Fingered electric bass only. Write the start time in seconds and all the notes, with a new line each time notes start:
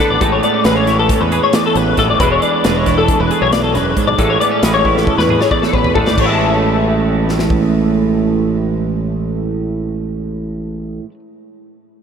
0.10 A1
0.21 A1
0.65 A1
1.21 E2
1.76 A1
1.98 A1
2.08 G#1
2.20 E1
2.65 E1
3.21 E1
3.42 B1
3.75 E1
4.08 B1
4.18 A1
4.63 A1
5.18 E2
5.73 A1
5.96 A1
6.06 G#1
6.18 A1